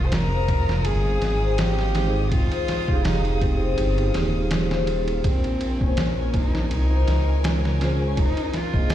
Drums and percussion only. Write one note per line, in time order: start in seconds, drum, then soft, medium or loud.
0.12 snare loud
0.12 ride medium
0.48 kick loud
0.48 ride medium
0.69 snare medium
0.85 ride medium
1.22 snare soft
1.22 ride medium
1.58 snare loud
1.58 ride medium
1.79 snare soft
1.95 snare medium
1.95 ride medium
2.32 kick loud
2.32 ride medium
2.52 ride soft
2.68 snare soft
2.68 ride medium
2.88 kick loud
3.05 snare loud
3.05 open hi-hat medium
3.25 ride soft
3.41 kick medium
3.41 ride medium
3.78 ride medium
3.98 ride soft
4.14 snare medium
4.14 ride medium
4.51 snare loud
4.51 ride medium
4.71 snare medium
4.87 ride medium
5.08 ride soft
5.24 kick loud
5.24 ride medium
5.44 ride soft
5.61 ride medium
5.81 kick medium
5.97 snare loud
5.97 ride medium
6.34 kick loud
6.34 ride medium
6.55 snare soft
6.71 ride medium
7.08 snare soft
7.08 ride medium
7.44 snare loud
7.44 ride medium
7.65 snare soft
7.81 snare medium
7.81 ride medium
8.17 kick loud
8.17 ride medium
8.37 ride soft
8.53 snare soft
8.53 ride medium
8.74 kick loud
8.90 snare loud
8.90 open hi-hat medium